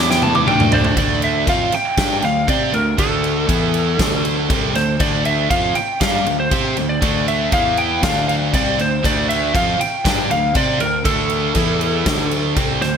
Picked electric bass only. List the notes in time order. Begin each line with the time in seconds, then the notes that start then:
Already playing: E2
0.46 D2
0.97 D2
1.47 F2
1.72 muted picked electric bass stroke
1.98 G2
2.23 D2
2.48 C3
2.73 D2
2.98 D2
3.49 E2
3.99 D2
4.50 C2
4.74 D2
5.00 D2
5.50 F2
5.76 muted picked electric bass stroke
6.01 G2
6.26 D2
6.51 C3
6.78 D2
7.02 D2
7.52 E2
8.03 D2
8.53 C2
8.78 D2
9.04 D2
9.54 F2
9.79 muted picked electric bass stroke
10.05 G2
10.29 D2
10.55 C3
10.79 D2
11.05 D2
11.55 E2
12.06 D2
12.56 C2
12.81 D2